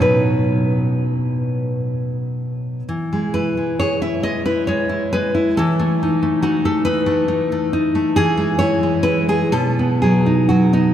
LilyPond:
\new Staff \with { instrumentName = "Nylon-string guitar" } { \time 6/8 \key b \mixolydian \tempo 4. = 44 << { b'4. r4. | r8 b'8 cis''16 e''16 dis''16 b'16 cis''8 b'8 | a'4 fis'16 a'16 b'4. | gis'8 cis''8 b'16 gis'16 a'8 gis'8 fis'16 dis'16 | } \\ { <b, fis dis'>2. | e16 gis16 e'16 gis16 gis'16 e'16 gis16 e'16 gis16 e'16 gis16 e'16 | e16 a16 dis'16 a16 dis'16 a16 dis'16 a16 dis'16 a16 dis'16 a16 | e16 gis16 e'16 gis16 e'16 gis16 b,16 b16 fis16 dis'16 fis16 b16 | } >> }